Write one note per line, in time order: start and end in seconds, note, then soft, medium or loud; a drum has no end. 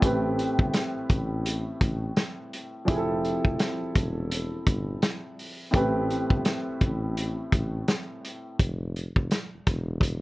0.00 0.53 A1 loud
0.00 2.83 A2 medium
0.00 2.83 A3 medium
0.00 2.84 C4 medium
0.00 2.85 G4 medium
0.00 kick loud
0.00 closed hi-hat loud
0.05 2.85 B4 medium
0.39 closed hi-hat medium
0.59 0.72 G1 medium
0.59 kick medium
0.74 snare loud
0.74 closed hi-hat loud
0.96 1.01 A1 soft
1.10 1.73 A1 loud
1.10 kick loud
1.10 closed hi-hat medium
1.46 closed hi-hat loud
1.81 2.13 A1 loud
1.81 kick medium
1.81 closed hi-hat medium
2.17 snare loud
2.17 closed hi-hat medium
2.53 closed hi-hat medium
2.85 3.39 F1 loud
2.85 5.68 F3 medium
2.85 5.69 C4 medium
2.85 5.70 E4 medium
2.85 kick loud
2.85 closed hi-hat loud
2.89 5.70 G4 medium
2.89 2.97 G#4 medium
2.97 5.74 A4 medium
3.25 closed hi-hat medium
3.45 3.58 F1 medium
3.45 kick medium
3.59 snare loud
3.59 closed hi-hat loud
3.81 3.87 E1 medium
3.95 4.59 E1 loud
3.95 kick loud
3.95 closed hi-hat medium
4.31 closed hi-hat loud
4.67 4.99 G1 loud
4.67 kick medium
4.67 closed hi-hat medium
5.02 snare loud
5.02 closed hi-hat medium
5.39 open hi-hat medium
5.71 6.24 A1 loud
5.71 8.54 A2 medium
5.71 8.55 A3 medium
5.71 8.55 C4 medium
5.71 kick loud
5.71 closed hi-hat loud
5.75 8.56 G4 medium
5.75 8.57 B4 medium
6.10 closed hi-hat medium
6.30 6.44 G1 medium
6.30 kick medium
6.45 snare loud
6.45 closed hi-hat loud
6.67 6.73 A1 soft
6.81 7.45 A1 medium
6.81 kick loud
6.81 closed hi-hat medium
7.17 closed hi-hat loud
7.52 7.84 A1 loud
7.52 kick medium
7.52 closed hi-hat medium
7.88 snare loud
7.88 closed hi-hat medium
8.25 closed hi-hat medium
8.59 9.10 F1 loud
8.59 kick loud
8.59 closed hi-hat loud
8.96 closed hi-hat medium
9.16 9.29 F1 medium
9.16 kick medium
9.31 snare loud
9.31 closed hi-hat medium
9.53 9.58 E1 soft
9.67 10.21 E1 loud
9.67 kick loud
9.67 snare soft
9.67 closed hi-hat medium
10.01 kick medium
10.01 closed hi-hat loud